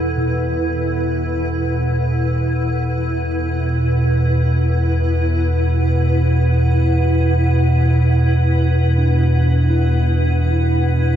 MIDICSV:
0, 0, Header, 1, 4, 480
1, 0, Start_track
1, 0, Tempo, 500000
1, 10715, End_track
2, 0, Start_track
2, 0, Title_t, "Ambient pad"
2, 0, Program_c, 0, 92
2, 0, Note_on_c, 0, 64, 83
2, 0, Note_on_c, 0, 71, 67
2, 0, Note_on_c, 0, 78, 71
2, 10715, Note_off_c, 0, 64, 0
2, 10715, Note_off_c, 0, 71, 0
2, 10715, Note_off_c, 0, 78, 0
2, 10715, End_track
3, 0, Start_track
3, 0, Title_t, "Singing bowl"
3, 0, Program_c, 1, 14
3, 164, Note_on_c, 1, 47, 54
3, 5650, Note_off_c, 1, 47, 0
3, 8621, Note_on_c, 1, 62, 61
3, 9315, Note_on_c, 1, 64, 53
3, 9489, Note_off_c, 1, 62, 0
3, 10715, Note_off_c, 1, 64, 0
3, 10715, End_track
4, 0, Start_track
4, 0, Title_t, "Synth drone"
4, 0, Program_c, 2, 95
4, 0, Note_on_c, 2, 40, 68
4, 0, Note_on_c, 2, 47, 67
4, 10715, Note_off_c, 2, 40, 0
4, 10715, Note_off_c, 2, 47, 0
4, 10715, End_track
0, 0, End_of_file